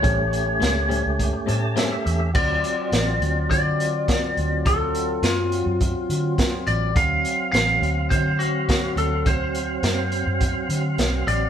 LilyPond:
<<
  \new Staff \with { instrumentName = "Lead electric guitar" } { \time 4/4 \key a \dorian \tempo 4 = 104 cis''2. r4 | d''2 d''2 | a'4 eis'2~ eis'8 d''8 | eis''4 eis''4 c''8 fis'4 a'8 |
c''2.~ c''8 d''8 | }
  \new Staff \with { instrumentName = "Tonewheel organ" } { \time 4/4 \key a \dorian << { r2 r8 a''8 e''4 | r1 | r1 | r1 |
r1 | } \\ { <a cis' g'>1 | <fis c' eis'>1~ | <fis c' eis'>1 | <fis c' eis''>1~ |
<fis c' eis''>1 | } >> }
  \new Staff \with { instrumentName = "Clean electric guitar" } { \time 4/4 \key a \dorian <a, g bis cis'>8 r8 <a, g bis cis'>16 r16 <a, g bis cis'>16 r8. <a, g bis cis'>16 r16 <a, g bis cis'>8 r8 | r1 | r1 | r1 |
r1 | }
  \new Staff \with { instrumentName = "Fingered electric bass" } { \clef bass \time 4/4 \key a \dorian a,,4 cis,8. cis,8 r16 a,8 r8 e,8 | d,8 r8 a,,8 d,8 d4. d,8~ | d,4 fis,8. fis,8 r16 d8 r8 a,,8 | d,8 r8 a,,8 d,8 d4. d,8~ |
d,4 fis,8. fis,8 r16 d8 b,,8 a,,8 | }
  \new DrumStaff \with { instrumentName = "Drums" } \drummode { \time 4/4 <hh bd>8 hh8 <hh sn>8 hh8 <hh bd>8 hh8 <hh sn>8 hh8 | <cymc bd>8 hh8 <hh sn>8 hh8 <hh bd>8 hh8 <hh bd sn>8 hh8 | <hh bd>8 hh8 <hh sn>8 hh8 <hh bd>8 hh8 <hh bd sn>8 hh8 | <hh bd>8 hh8 <hh sn>8 hh8 <hh bd>8 hh8 <hh bd sn>8 hh8 |
<hh bd>8 hh8 <hh sn>8 hh8 <hh bd>8 hh8 <hh sn>8 hh8 | }
>>